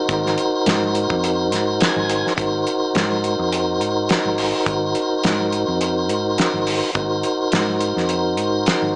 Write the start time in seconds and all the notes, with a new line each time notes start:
Already playing: D#4 F#4 A#4 C5
0.09 G#1, kick, closed hi-hat
0.26 snare
0.38 closed hi-hat
0.66 G#2, snare, closed hi-hat
0.95 closed hi-hat
1.10 F2, kick
1.24 closed hi-hat
1.52 G#2, snare, closed hi-hat
1.80 G#5, snare, closed hi-hat
1.96 G#1
2.10 closed hi-hat
2.27 snare
2.36 G#1 D#4 F#4 A#4 C5, kick, closed hi-hat
2.67 closed hi-hat
2.95 G#2, snare, closed hi-hat
3.24 closed hi-hat
3.39 F2
3.52 closed hi-hat
3.81 G#2, closed hi-hat
4.09 snare, closed hi-hat
4.25 G#1
4.38 open hi-hat
4.66 G#1, kick, closed hi-hat
4.95 closed hi-hat
5.23 G#2, snare, closed hi-hat
5.53 closed hi-hat
5.68 F2
5.81 closed hi-hat
6.09 G#2, closed hi-hat
6.38 snare, closed hi-hat
6.54 G#1
6.67 open hi-hat
6.94 G#1 D#4 F#4 A#4 C5, kick, closed hi-hat
7.23 closed hi-hat
7.52 G#2, snare, closed hi-hat
7.80 closed hi-hat
7.96 F2, snare
8.09 closed hi-hat
8.37 G#2, closed hi-hat
8.66 snare, closed hi-hat
8.82 G#1